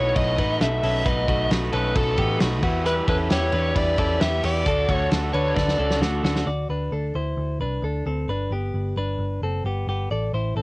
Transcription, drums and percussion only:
0, 0, Header, 1, 2, 480
1, 0, Start_track
1, 0, Tempo, 452489
1, 1123, Time_signature, 4, 2, 24, 8
1, 11266, End_track
2, 0, Start_track
2, 0, Title_t, "Drums"
2, 167, Note_on_c, 9, 51, 82
2, 169, Note_on_c, 9, 36, 104
2, 273, Note_off_c, 9, 51, 0
2, 275, Note_off_c, 9, 36, 0
2, 406, Note_on_c, 9, 51, 74
2, 407, Note_on_c, 9, 36, 98
2, 512, Note_off_c, 9, 51, 0
2, 514, Note_off_c, 9, 36, 0
2, 648, Note_on_c, 9, 51, 79
2, 649, Note_on_c, 9, 38, 121
2, 754, Note_off_c, 9, 51, 0
2, 755, Note_off_c, 9, 38, 0
2, 885, Note_on_c, 9, 46, 81
2, 885, Note_on_c, 9, 51, 67
2, 992, Note_off_c, 9, 46, 0
2, 992, Note_off_c, 9, 51, 0
2, 1123, Note_on_c, 9, 36, 104
2, 1127, Note_on_c, 9, 44, 64
2, 1127, Note_on_c, 9, 51, 59
2, 1230, Note_off_c, 9, 36, 0
2, 1233, Note_off_c, 9, 44, 0
2, 1233, Note_off_c, 9, 51, 0
2, 1362, Note_on_c, 9, 36, 97
2, 1367, Note_on_c, 9, 51, 59
2, 1468, Note_off_c, 9, 36, 0
2, 1473, Note_off_c, 9, 51, 0
2, 1601, Note_on_c, 9, 51, 73
2, 1606, Note_on_c, 9, 38, 100
2, 1707, Note_off_c, 9, 51, 0
2, 1712, Note_off_c, 9, 38, 0
2, 1832, Note_on_c, 9, 51, 53
2, 1938, Note_off_c, 9, 51, 0
2, 2075, Note_on_c, 9, 36, 106
2, 2075, Note_on_c, 9, 51, 87
2, 2181, Note_off_c, 9, 36, 0
2, 2181, Note_off_c, 9, 51, 0
2, 2309, Note_on_c, 9, 51, 71
2, 2312, Note_on_c, 9, 36, 93
2, 2415, Note_off_c, 9, 51, 0
2, 2418, Note_off_c, 9, 36, 0
2, 2551, Note_on_c, 9, 51, 81
2, 2552, Note_on_c, 9, 38, 120
2, 2657, Note_off_c, 9, 51, 0
2, 2658, Note_off_c, 9, 38, 0
2, 2788, Note_on_c, 9, 49, 73
2, 2790, Note_on_c, 9, 36, 102
2, 2894, Note_off_c, 9, 49, 0
2, 2896, Note_off_c, 9, 36, 0
2, 3032, Note_on_c, 9, 44, 66
2, 3032, Note_on_c, 9, 51, 58
2, 3138, Note_off_c, 9, 44, 0
2, 3138, Note_off_c, 9, 51, 0
2, 3267, Note_on_c, 9, 36, 98
2, 3269, Note_on_c, 9, 51, 59
2, 3373, Note_off_c, 9, 36, 0
2, 3375, Note_off_c, 9, 51, 0
2, 3502, Note_on_c, 9, 51, 78
2, 3508, Note_on_c, 9, 38, 108
2, 3609, Note_off_c, 9, 51, 0
2, 3614, Note_off_c, 9, 38, 0
2, 3736, Note_on_c, 9, 51, 52
2, 3842, Note_off_c, 9, 51, 0
2, 3985, Note_on_c, 9, 36, 99
2, 3987, Note_on_c, 9, 51, 88
2, 4091, Note_off_c, 9, 36, 0
2, 4093, Note_off_c, 9, 51, 0
2, 4221, Note_on_c, 9, 51, 76
2, 4224, Note_on_c, 9, 36, 93
2, 4327, Note_off_c, 9, 51, 0
2, 4330, Note_off_c, 9, 36, 0
2, 4465, Note_on_c, 9, 51, 86
2, 4467, Note_on_c, 9, 38, 120
2, 4571, Note_off_c, 9, 51, 0
2, 4573, Note_off_c, 9, 38, 0
2, 4703, Note_on_c, 9, 46, 80
2, 4703, Note_on_c, 9, 51, 67
2, 4809, Note_off_c, 9, 46, 0
2, 4809, Note_off_c, 9, 51, 0
2, 4941, Note_on_c, 9, 36, 99
2, 4942, Note_on_c, 9, 44, 66
2, 4942, Note_on_c, 9, 51, 59
2, 5047, Note_off_c, 9, 36, 0
2, 5048, Note_off_c, 9, 44, 0
2, 5048, Note_off_c, 9, 51, 0
2, 5181, Note_on_c, 9, 36, 98
2, 5185, Note_on_c, 9, 51, 63
2, 5287, Note_off_c, 9, 36, 0
2, 5291, Note_off_c, 9, 51, 0
2, 5422, Note_on_c, 9, 51, 70
2, 5427, Note_on_c, 9, 38, 102
2, 5528, Note_off_c, 9, 51, 0
2, 5533, Note_off_c, 9, 38, 0
2, 5661, Note_on_c, 9, 51, 51
2, 5767, Note_off_c, 9, 51, 0
2, 5901, Note_on_c, 9, 36, 101
2, 5911, Note_on_c, 9, 38, 61
2, 6007, Note_off_c, 9, 36, 0
2, 6017, Note_off_c, 9, 38, 0
2, 6027, Note_on_c, 9, 38, 57
2, 6133, Note_off_c, 9, 38, 0
2, 6263, Note_on_c, 9, 38, 71
2, 6369, Note_off_c, 9, 38, 0
2, 6384, Note_on_c, 9, 38, 90
2, 6490, Note_off_c, 9, 38, 0
2, 6628, Note_on_c, 9, 38, 103
2, 6734, Note_off_c, 9, 38, 0
2, 6744, Note_on_c, 9, 38, 90
2, 6850, Note_off_c, 9, 38, 0
2, 11266, End_track
0, 0, End_of_file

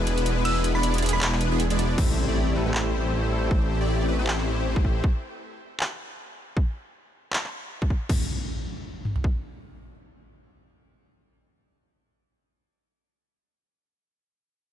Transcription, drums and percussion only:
0, 0, Header, 1, 2, 480
1, 0, Start_track
1, 0, Key_signature, 0, "minor"
1, 0, Tempo, 382166
1, 566, Time_signature, 4, 2, 24, 8
1, 18498, End_track
2, 0, Start_track
2, 0, Title_t, "Drums"
2, 86, Note_on_c, 9, 42, 74
2, 212, Note_off_c, 9, 42, 0
2, 220, Note_on_c, 9, 42, 62
2, 326, Note_off_c, 9, 42, 0
2, 326, Note_on_c, 9, 42, 65
2, 452, Note_off_c, 9, 42, 0
2, 566, Note_on_c, 9, 42, 77
2, 566, Note_on_c, 9, 49, 50
2, 692, Note_off_c, 9, 42, 0
2, 692, Note_off_c, 9, 49, 0
2, 806, Note_on_c, 9, 42, 68
2, 932, Note_off_c, 9, 42, 0
2, 1046, Note_on_c, 9, 42, 84
2, 1172, Note_off_c, 9, 42, 0
2, 1181, Note_on_c, 9, 42, 54
2, 1234, Note_off_c, 9, 42, 0
2, 1234, Note_on_c, 9, 42, 71
2, 1287, Note_off_c, 9, 42, 0
2, 1287, Note_on_c, 9, 42, 53
2, 1332, Note_off_c, 9, 42, 0
2, 1332, Note_on_c, 9, 42, 68
2, 1367, Note_off_c, 9, 42, 0
2, 1367, Note_on_c, 9, 42, 85
2, 1492, Note_off_c, 9, 42, 0
2, 1526, Note_on_c, 9, 39, 113
2, 1526, Note_on_c, 9, 42, 83
2, 1652, Note_off_c, 9, 39, 0
2, 1652, Note_off_c, 9, 42, 0
2, 1660, Note_on_c, 9, 39, 37
2, 1767, Note_on_c, 9, 42, 68
2, 1786, Note_off_c, 9, 39, 0
2, 1892, Note_off_c, 9, 42, 0
2, 2006, Note_on_c, 9, 42, 84
2, 2132, Note_off_c, 9, 42, 0
2, 2140, Note_on_c, 9, 42, 65
2, 2246, Note_off_c, 9, 42, 0
2, 2246, Note_on_c, 9, 42, 68
2, 2372, Note_off_c, 9, 42, 0
2, 2487, Note_on_c, 9, 36, 107
2, 2487, Note_on_c, 9, 57, 78
2, 2612, Note_off_c, 9, 36, 0
2, 2612, Note_off_c, 9, 57, 0
2, 3447, Note_on_c, 9, 39, 113
2, 3572, Note_off_c, 9, 39, 0
2, 4407, Note_on_c, 9, 36, 106
2, 4533, Note_off_c, 9, 36, 0
2, 5367, Note_on_c, 9, 39, 112
2, 5492, Note_off_c, 9, 39, 0
2, 5501, Note_on_c, 9, 39, 34
2, 5627, Note_off_c, 9, 39, 0
2, 5981, Note_on_c, 9, 36, 102
2, 6087, Note_off_c, 9, 36, 0
2, 6087, Note_on_c, 9, 36, 53
2, 6213, Note_off_c, 9, 36, 0
2, 6327, Note_on_c, 9, 36, 114
2, 6453, Note_off_c, 9, 36, 0
2, 7287, Note_on_c, 9, 39, 113
2, 7413, Note_off_c, 9, 39, 0
2, 8247, Note_on_c, 9, 36, 107
2, 8372, Note_off_c, 9, 36, 0
2, 9206, Note_on_c, 9, 39, 111
2, 9332, Note_off_c, 9, 39, 0
2, 9340, Note_on_c, 9, 39, 34
2, 9466, Note_off_c, 9, 39, 0
2, 9820, Note_on_c, 9, 36, 92
2, 9927, Note_off_c, 9, 36, 0
2, 9927, Note_on_c, 9, 36, 57
2, 10052, Note_off_c, 9, 36, 0
2, 10167, Note_on_c, 9, 36, 100
2, 10167, Note_on_c, 9, 57, 71
2, 10292, Note_off_c, 9, 36, 0
2, 10292, Note_off_c, 9, 57, 0
2, 11367, Note_on_c, 9, 47, 54
2, 11493, Note_off_c, 9, 47, 0
2, 11501, Note_on_c, 9, 43, 67
2, 11607, Note_on_c, 9, 36, 78
2, 11627, Note_off_c, 9, 43, 0
2, 11733, Note_off_c, 9, 36, 0
2, 18498, End_track
0, 0, End_of_file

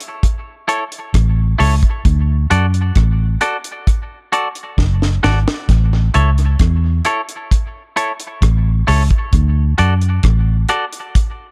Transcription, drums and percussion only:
0, 0, Header, 1, 2, 480
1, 0, Start_track
1, 0, Key_signature, 3, "major"
1, 0, Tempo, 910609
1, 1078, Time_signature, 4, 2, 24, 8
1, 6071, End_track
2, 0, Start_track
2, 0, Title_t, "Drums"
2, 2, Note_on_c, 9, 42, 55
2, 55, Note_off_c, 9, 42, 0
2, 122, Note_on_c, 9, 36, 101
2, 124, Note_on_c, 9, 42, 88
2, 175, Note_off_c, 9, 36, 0
2, 177, Note_off_c, 9, 42, 0
2, 362, Note_on_c, 9, 42, 59
2, 415, Note_off_c, 9, 42, 0
2, 485, Note_on_c, 9, 42, 50
2, 537, Note_off_c, 9, 42, 0
2, 602, Note_on_c, 9, 36, 91
2, 602, Note_on_c, 9, 42, 95
2, 607, Note_on_c, 9, 37, 102
2, 654, Note_off_c, 9, 36, 0
2, 655, Note_off_c, 9, 42, 0
2, 659, Note_off_c, 9, 37, 0
2, 844, Note_on_c, 9, 46, 81
2, 896, Note_off_c, 9, 46, 0
2, 963, Note_on_c, 9, 36, 82
2, 963, Note_on_c, 9, 42, 49
2, 1016, Note_off_c, 9, 36, 0
2, 1016, Note_off_c, 9, 42, 0
2, 1081, Note_on_c, 9, 36, 109
2, 1081, Note_on_c, 9, 42, 88
2, 1133, Note_off_c, 9, 36, 0
2, 1134, Note_off_c, 9, 42, 0
2, 1322, Note_on_c, 9, 42, 74
2, 1375, Note_off_c, 9, 42, 0
2, 1444, Note_on_c, 9, 42, 41
2, 1497, Note_off_c, 9, 42, 0
2, 1557, Note_on_c, 9, 42, 72
2, 1560, Note_on_c, 9, 36, 102
2, 1566, Note_on_c, 9, 37, 97
2, 1610, Note_off_c, 9, 42, 0
2, 1612, Note_off_c, 9, 36, 0
2, 1619, Note_off_c, 9, 37, 0
2, 1796, Note_on_c, 9, 42, 67
2, 1849, Note_off_c, 9, 42, 0
2, 1920, Note_on_c, 9, 42, 58
2, 1973, Note_off_c, 9, 42, 0
2, 2041, Note_on_c, 9, 36, 93
2, 2041, Note_on_c, 9, 42, 89
2, 2094, Note_off_c, 9, 36, 0
2, 2094, Note_off_c, 9, 42, 0
2, 2282, Note_on_c, 9, 42, 58
2, 2334, Note_off_c, 9, 42, 0
2, 2400, Note_on_c, 9, 42, 48
2, 2453, Note_off_c, 9, 42, 0
2, 2520, Note_on_c, 9, 36, 89
2, 2524, Note_on_c, 9, 38, 52
2, 2572, Note_off_c, 9, 36, 0
2, 2576, Note_off_c, 9, 38, 0
2, 2647, Note_on_c, 9, 38, 53
2, 2700, Note_off_c, 9, 38, 0
2, 2763, Note_on_c, 9, 38, 82
2, 2816, Note_off_c, 9, 38, 0
2, 2887, Note_on_c, 9, 38, 84
2, 2939, Note_off_c, 9, 38, 0
2, 2998, Note_on_c, 9, 42, 88
2, 2999, Note_on_c, 9, 36, 108
2, 3051, Note_off_c, 9, 36, 0
2, 3051, Note_off_c, 9, 42, 0
2, 3238, Note_on_c, 9, 42, 72
2, 3291, Note_off_c, 9, 42, 0
2, 3362, Note_on_c, 9, 42, 41
2, 3415, Note_off_c, 9, 42, 0
2, 3476, Note_on_c, 9, 42, 76
2, 3478, Note_on_c, 9, 36, 100
2, 3484, Note_on_c, 9, 37, 100
2, 3528, Note_off_c, 9, 42, 0
2, 3530, Note_off_c, 9, 36, 0
2, 3537, Note_off_c, 9, 37, 0
2, 3714, Note_on_c, 9, 42, 67
2, 3767, Note_off_c, 9, 42, 0
2, 3841, Note_on_c, 9, 42, 55
2, 3894, Note_off_c, 9, 42, 0
2, 3961, Note_on_c, 9, 36, 97
2, 3963, Note_on_c, 9, 42, 90
2, 4014, Note_off_c, 9, 36, 0
2, 4016, Note_off_c, 9, 42, 0
2, 4201, Note_on_c, 9, 42, 59
2, 4254, Note_off_c, 9, 42, 0
2, 4320, Note_on_c, 9, 42, 55
2, 4373, Note_off_c, 9, 42, 0
2, 4439, Note_on_c, 9, 36, 95
2, 4440, Note_on_c, 9, 42, 95
2, 4445, Note_on_c, 9, 37, 107
2, 4491, Note_off_c, 9, 36, 0
2, 4493, Note_off_c, 9, 42, 0
2, 4498, Note_off_c, 9, 37, 0
2, 4681, Note_on_c, 9, 46, 81
2, 4733, Note_off_c, 9, 46, 0
2, 4800, Note_on_c, 9, 36, 87
2, 4800, Note_on_c, 9, 42, 48
2, 4852, Note_off_c, 9, 42, 0
2, 4853, Note_off_c, 9, 36, 0
2, 4916, Note_on_c, 9, 42, 88
2, 4917, Note_on_c, 9, 36, 108
2, 4969, Note_off_c, 9, 42, 0
2, 4970, Note_off_c, 9, 36, 0
2, 5157, Note_on_c, 9, 42, 70
2, 5210, Note_off_c, 9, 42, 0
2, 5279, Note_on_c, 9, 42, 37
2, 5332, Note_off_c, 9, 42, 0
2, 5393, Note_on_c, 9, 42, 73
2, 5396, Note_on_c, 9, 36, 102
2, 5402, Note_on_c, 9, 37, 98
2, 5446, Note_off_c, 9, 42, 0
2, 5449, Note_off_c, 9, 36, 0
2, 5454, Note_off_c, 9, 37, 0
2, 5633, Note_on_c, 9, 42, 68
2, 5685, Note_off_c, 9, 42, 0
2, 5759, Note_on_c, 9, 42, 55
2, 5812, Note_off_c, 9, 42, 0
2, 5878, Note_on_c, 9, 36, 100
2, 5878, Note_on_c, 9, 42, 83
2, 5931, Note_off_c, 9, 36, 0
2, 5931, Note_off_c, 9, 42, 0
2, 6071, End_track
0, 0, End_of_file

